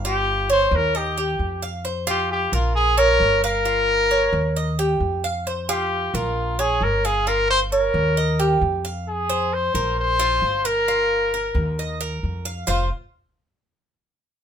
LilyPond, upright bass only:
\new Staff \with { instrumentName = "Upright bass" } { \clef bass \time 4/4 \key f \minor \tempo 4 = 133 g,,4. ees,4. f,4~ | f,4. bes,,4. g,,4~ | g,,4. ees,4. f,4~ | f,4. bes,,4. g,,4~ |
g,,4. ees,4. f,4~ | f,4. bes,,4. g,,4~ | g,,4. ees,4. f,4 | f,,8 r2. r8 | }